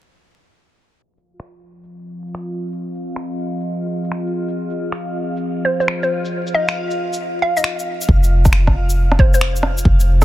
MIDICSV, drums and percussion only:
0, 0, Header, 1, 2, 480
1, 0, Start_track
1, 0, Key_signature, -4, "minor"
1, 0, Tempo, 441176
1, 1117, Time_signature, 4, 2, 24, 8
1, 11149, End_track
2, 0, Start_track
2, 0, Title_t, "Drums"
2, 1277, Note_on_c, 9, 82, 42
2, 1386, Note_off_c, 9, 82, 0
2, 1520, Note_on_c, 9, 26, 93
2, 1628, Note_off_c, 9, 26, 0
2, 1996, Note_on_c, 9, 82, 54
2, 2105, Note_off_c, 9, 82, 0
2, 2479, Note_on_c, 9, 82, 51
2, 2553, Note_on_c, 9, 26, 90
2, 2587, Note_off_c, 9, 82, 0
2, 2662, Note_off_c, 9, 26, 0
2, 2716, Note_on_c, 9, 82, 40
2, 2825, Note_off_c, 9, 82, 0
2, 2959, Note_on_c, 9, 82, 52
2, 3068, Note_off_c, 9, 82, 0
2, 3204, Note_on_c, 9, 82, 42
2, 3313, Note_off_c, 9, 82, 0
2, 3441, Note_on_c, 9, 26, 95
2, 3441, Note_on_c, 9, 82, 52
2, 3550, Note_off_c, 9, 26, 0
2, 3550, Note_off_c, 9, 82, 0
2, 3681, Note_on_c, 9, 82, 29
2, 3790, Note_off_c, 9, 82, 0
2, 3922, Note_on_c, 9, 82, 53
2, 4030, Note_off_c, 9, 82, 0
2, 4399, Note_on_c, 9, 82, 51
2, 4479, Note_on_c, 9, 26, 99
2, 4508, Note_off_c, 9, 82, 0
2, 4587, Note_off_c, 9, 26, 0
2, 4640, Note_on_c, 9, 82, 43
2, 4748, Note_off_c, 9, 82, 0
2, 4877, Note_on_c, 9, 82, 54
2, 4985, Note_off_c, 9, 82, 0
2, 5116, Note_on_c, 9, 82, 41
2, 5225, Note_off_c, 9, 82, 0
2, 5357, Note_on_c, 9, 26, 102
2, 5357, Note_on_c, 9, 82, 54
2, 5466, Note_off_c, 9, 26, 0
2, 5466, Note_off_c, 9, 82, 0
2, 5840, Note_on_c, 9, 82, 53
2, 5949, Note_off_c, 9, 82, 0
2, 6318, Note_on_c, 9, 82, 50
2, 6399, Note_on_c, 9, 26, 99
2, 6427, Note_off_c, 9, 82, 0
2, 6508, Note_off_c, 9, 26, 0
2, 6560, Note_on_c, 9, 82, 41
2, 6669, Note_off_c, 9, 82, 0
2, 6800, Note_on_c, 9, 82, 54
2, 6909, Note_off_c, 9, 82, 0
2, 7040, Note_on_c, 9, 82, 41
2, 7148, Note_off_c, 9, 82, 0
2, 7274, Note_on_c, 9, 26, 100
2, 7274, Note_on_c, 9, 82, 52
2, 7383, Note_off_c, 9, 26, 0
2, 7383, Note_off_c, 9, 82, 0
2, 7516, Note_on_c, 9, 82, 28
2, 7625, Note_off_c, 9, 82, 0
2, 7760, Note_on_c, 9, 82, 52
2, 7869, Note_off_c, 9, 82, 0
2, 8238, Note_on_c, 9, 82, 51
2, 8313, Note_on_c, 9, 26, 100
2, 8347, Note_off_c, 9, 82, 0
2, 8422, Note_off_c, 9, 26, 0
2, 8479, Note_on_c, 9, 82, 39
2, 8588, Note_off_c, 9, 82, 0
2, 8718, Note_on_c, 9, 82, 52
2, 8798, Note_on_c, 9, 36, 107
2, 8826, Note_off_c, 9, 82, 0
2, 8907, Note_off_c, 9, 36, 0
2, 8958, Note_on_c, 9, 82, 43
2, 9067, Note_off_c, 9, 82, 0
2, 9196, Note_on_c, 9, 37, 35
2, 9196, Note_on_c, 9, 82, 55
2, 9199, Note_on_c, 9, 36, 100
2, 9277, Note_on_c, 9, 26, 94
2, 9304, Note_off_c, 9, 37, 0
2, 9304, Note_off_c, 9, 82, 0
2, 9308, Note_off_c, 9, 36, 0
2, 9386, Note_off_c, 9, 26, 0
2, 9437, Note_on_c, 9, 37, 50
2, 9439, Note_on_c, 9, 36, 59
2, 9546, Note_off_c, 9, 37, 0
2, 9548, Note_off_c, 9, 36, 0
2, 9680, Note_on_c, 9, 82, 54
2, 9788, Note_off_c, 9, 82, 0
2, 9919, Note_on_c, 9, 37, 59
2, 9999, Note_on_c, 9, 36, 96
2, 10028, Note_off_c, 9, 37, 0
2, 10107, Note_off_c, 9, 36, 0
2, 10162, Note_on_c, 9, 82, 53
2, 10242, Note_on_c, 9, 26, 99
2, 10270, Note_off_c, 9, 82, 0
2, 10350, Note_off_c, 9, 26, 0
2, 10401, Note_on_c, 9, 82, 42
2, 10477, Note_on_c, 9, 37, 59
2, 10510, Note_off_c, 9, 82, 0
2, 10586, Note_off_c, 9, 37, 0
2, 10637, Note_on_c, 9, 82, 57
2, 10719, Note_on_c, 9, 36, 115
2, 10746, Note_off_c, 9, 82, 0
2, 10828, Note_off_c, 9, 36, 0
2, 10879, Note_on_c, 9, 82, 46
2, 10988, Note_off_c, 9, 82, 0
2, 11149, End_track
0, 0, End_of_file